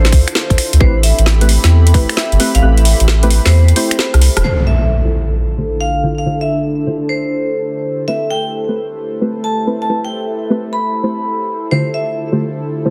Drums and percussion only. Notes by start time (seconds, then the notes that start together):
0.05 snare, closed hi-hat
0.12 kick, open hi-hat
0.28 finger snap, closed hi-hat
0.35 snare
0.50 kick, closed hi-hat
0.58 finger snap, open hi-hat
0.73 closed hi-hat
0.81 kick
1.03 open hi-hat
1.19 closed hi-hat
1.26 snare
1.41 closed hi-hat
1.49 open hi-hat
1.64 snare, closed hi-hat
1.87 closed hi-hat
1.94 kick, open hi-hat
2.09 finger snap, open hi-hat
2.17 snare
2.32 closed hi-hat
2.40 open hi-hat
2.55 closed hi-hat
2.78 closed hi-hat
2.85 open hi-hat
3.00 closed hi-hat
3.08 snare
3.23 closed hi-hat
3.30 open hi-hat
3.46 snare, open hi-hat
3.68 closed hi-hat
3.76 open hi-hat
3.91 finger snap, closed hi-hat
3.99 cross-stick, snare
4.14 cross-stick, closed hi-hat
4.21 open hi-hat
4.37 cross-stick, closed hi-hat